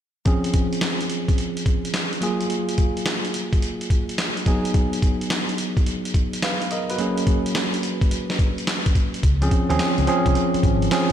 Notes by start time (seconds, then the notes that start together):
0.25 F3 C4 C#4 G#4, kick, closed hi-hat
0.44 closed hi-hat
0.54 kick, closed hi-hat
0.73 closed hi-hat
0.81 snare, clap, closed hi-hat
1.01 closed hi-hat
1.10 closed hi-hat
1.28 kick, closed hi-hat
1.38 closed hi-hat
1.57 closed hi-hat
1.66 kick, closed hi-hat
1.85 closed hi-hat
1.94 snare, clap, closed hi-hat
2.13 closed hi-hat
2.21 F#3 A#3 F4 G#4, closed hi-hat
2.41 closed hi-hat
2.50 closed hi-hat
2.69 closed hi-hat
2.78 kick, closed hi-hat
2.97 closed hi-hat
3.06 snare, clap, closed hi-hat
3.25 closed hi-hat
3.34 closed hi-hat
3.53 kick, closed hi-hat
3.62 closed hi-hat
3.81 closed hi-hat
3.90 kick, closed hi-hat
4.09 closed hi-hat
4.18 snare, clap, closed hi-hat
4.37 closed hi-hat
4.46 F#3 B3 D#4 G#4, kick, closed hi-hat
4.65 closed hi-hat
4.74 kick, closed hi-hat
4.93 closed hi-hat
5.02 kick, closed hi-hat
5.21 closed hi-hat
5.30 snare, clap, closed hi-hat
5.49 closed hi-hat
5.58 closed hi-hat
5.77 kick, closed hi-hat
5.86 closed hi-hat
6.05 closed hi-hat
6.14 kick, closed hi-hat
6.33 closed hi-hat
6.42 B4 F5, snare, clap, closed hi-hat
6.62 closed hi-hat
6.71 A#4 D#5, closed hi-hat
6.90 F#4 B4, closed hi-hat
6.98 F#3 A#3 C#4 G#4, closed hi-hat
7.17 closed hi-hat
7.27 kick, closed hi-hat
7.46 closed hi-hat
7.55 snare, clap, closed hi-hat
7.74 closed hi-hat
7.83 closed hi-hat
8.01 kick, closed hi-hat
8.11 closed hi-hat
8.30 snare, closed hi-hat
8.39 kick, closed hi-hat
8.58 closed hi-hat
8.67 snare, clap, closed hi-hat
8.86 kick, closed hi-hat
8.95 kick, closed hi-hat
9.14 closed hi-hat
9.23 C#2, kick, closed hi-hat
9.42 F3 C4 C#4 G#4, closed hi-hat
9.51 kick, closed hi-hat
9.69 D#2 F3 C4 C#4 G#4, closed hi-hat
9.79 snare, clap, closed hi-hat
9.98 C#2, closed hi-hat
10.07 F3 C4 C#4 G#4, closed hi-hat
10.26 C2, kick, closed hi-hat
10.35 closed hi-hat
10.54 muted fingered electric bass stroke, closed hi-hat
10.63 G#1, kick, closed hi-hat
10.82 closed hi-hat
10.91 F3 C4 C#4 G#4, snare, clap, closed hi-hat